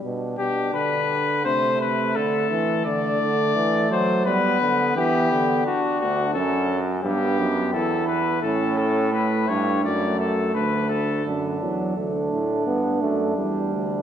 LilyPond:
<<
  \new Staff \with { instrumentName = "Trumpet" } { \time 4/4 \key g \major \tempo 4 = 86 r8 g'8 b'4 c''8 b'8 a'4 | d''4. c''8 b'4 g'4 | fis'8 fis'8 a'8 r8 g'4 a'8 b'8 | a'8 a'8 b'8 cis''8 d''8 a'8 b'8 a'8 |
r1 | }
  \new Staff \with { instrumentName = "Flugelhorn" } { \time 4/4 \key g \major d'2 a2 | a2 b4 b4 | d'4 cis'8 r8 b4 e'4 | cis'4 a4 a2 |
d'4 d'2. | }
  \new Staff \with { instrumentName = "Trombone" } { \clef bass \time 4/4 \key g \major b,8 b,8 d4 c4 d8 e8 | d8 d8 e8 fis8 g8 d8 e8 d8 | r1 | r1 |
d8 fis8 a4 b8 a8 g4 | }
  \new Staff \with { instrumentName = "Bass trombone" } { \clef bass \time 4/4 \key g \major r1 | r1 | r8 d,8 fis,4 g,8 fis,8 e,4 | a,4. g,8 fis,4 d,4 |
fis,8 e,8 d,8 a,8 g,8 fis,8 e,8 d,8 | }
>>